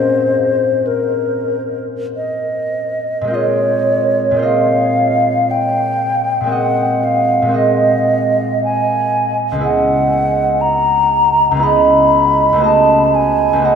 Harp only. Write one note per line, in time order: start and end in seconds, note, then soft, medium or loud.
0.00 3.20 A#2 soft
0.00 3.47 A#3 soft
0.00 3.26 C4 soft
0.00 3.50 C#4 soft
0.00 3.51 G#4 soft
3.21 4.30 A#2 soft
3.21 4.33 G#3 soft
3.27 4.35 C4 soft
3.27 4.38 F4 soft
3.34 4.41 D#5 soft
4.31 6.39 A#2 soft
4.31 6.42 G#3 soft
4.37 6.45 C4 soft
4.37 6.55 F4 soft
4.42 6.51 D#5 soft
6.41 7.41 A#2 soft
6.41 7.44 G#3 soft
6.46 7.47 C4 soft
6.46 7.50 F#4 soft
6.52 7.52 D#5 soft
7.42 9.62 A#2 soft
7.42 9.54 G#3 soft
7.48 9.65 C4 soft
7.48 11.41 F#4 soft
7.54 9.62 D#5 soft
9.52 11.50 C#2 soft
9.52 11.53 G#3 soft
9.58 11.55 B3 soft
9.58 11.58 E4 soft
9.63 11.61 D#5 soft
11.51 12.52 C#2 soft
11.51 12.65 G#3 soft
11.57 12.57 B3 soft
11.57 12.67 E4 soft
11.62 12.63 D#5 soft
12.53 13.52 C#2 soft
12.53 13.55 A3 soft
12.58 13.57 B3 soft
12.58 13.61 F#4 soft
12.64 13.63 D#5 soft
13.53 13.75 C#2 soft
13.53 13.75 A3 soft
13.59 13.75 B3 soft
13.59 13.75 F#4 soft
13.65 13.75 D#5 soft